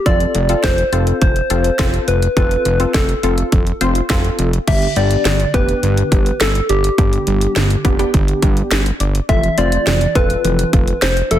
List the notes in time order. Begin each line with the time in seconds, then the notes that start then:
0.06 F1 C4 F4 A4 D5, kick, closed hi-hat
0.20 closed hi-hat
0.35 F1, closed hi-hat
0.49 C4 F4 A4, closed hi-hat
0.64 F1 C5, kick, snare, closed hi-hat
0.78 closed hi-hat
0.93 F1 C4 F4 A4, closed hi-hat
1.07 closed hi-hat
1.21 F1 C5, kick, closed hi-hat
1.36 closed hi-hat
1.50 F1 C4 F4 A4, closed hi-hat
1.64 closed hi-hat
1.79 F1 C4 F4 A4, kick, snare, closed hi-hat
1.94 closed hi-hat
2.08 F1 B4, closed hi-hat
2.22 closed hi-hat
2.37 F1 C4 F4 A4 B4, kick, closed hi-hat
2.51 closed hi-hat
2.65 F1, closed hi-hat
2.80 C4 F4 A4, closed hi-hat
2.94 F1 A4, kick, snare, closed hi-hat
3.09 closed hi-hat
3.23 F1 C4 F4 A4, closed hi-hat
3.38 closed hi-hat
3.52 F1, kick, closed hi-hat
3.67 closed hi-hat
3.81 F1 C4 F4 C5, closed hi-hat
3.95 closed hi-hat
4.10 F1 C4 F4 A4, kick, snare, closed hi-hat
4.25 closed hi-hat
4.39 F1, closed hi-hat
4.53 closed hi-hat
4.68 G1 D3 B3 D4 G4 E5, kick, closed hi-hat, crash
4.82 closed hi-hat
4.96 G1 G3 B3 D4 G4 D5, closed hi-hat
5.11 closed hi-hat
5.25 G1 D3, snare, closed hi-hat
5.40 closed hi-hat
5.54 F1 B3 D4 G4 B4, kick, closed hi-hat
5.69 closed hi-hat
5.83 G1 D3, closed hi-hat
5.98 closed hi-hat
6.12 G1 G4, kick, closed hi-hat
6.26 closed hi-hat
6.40 G1 A4, snare, closed hi-hat
6.55 closed hi-hat
6.69 G1 G4 D5, closed hi-hat
6.84 closed hi-hat
6.98 G1 D3 B3 D4 G4, kick, closed hi-hat
7.13 closed hi-hat
7.27 G1 G3, closed hi-hat
7.41 closed hi-hat
7.56 G1 D3, snare, closed hi-hat
7.70 closed hi-hat
7.85 F1 B3 D4 G4, kick, closed hi-hat
7.99 B3 D4 G4, closed hi-hat
8.14 G1 D3, kick, closed hi-hat
8.28 closed hi-hat
8.42 G1 G4, kick, closed hi-hat
8.57 closed hi-hat
8.71 G1, snare, closed hi-hat
8.86 closed hi-hat
9.00 G1 D5, closed hi-hat
9.15 closed hi-hat
9.29 F1 E3 C4 F4 A4 E5, kick, closed hi-hat
9.43 closed hi-hat
9.58 F1 A3 C4 F4 C5 D5, closed hi-hat
9.72 closed hi-hat
9.87 F1 E3, snare, closed hi-hat
10.01 closed hi-hat
10.15 E1 C4 F4 A4 B4, kick, closed hi-hat
10.30 closed hi-hat
10.44 F1 E3, closed hi-hat
10.59 closed hi-hat
10.73 F1 F4, kick, closed hi-hat
10.88 closed hi-hat
11.02 F1 C5, snare, closed hi-hat
11.17 closed hi-hat
11.31 F1 A4 E5, closed hi-hat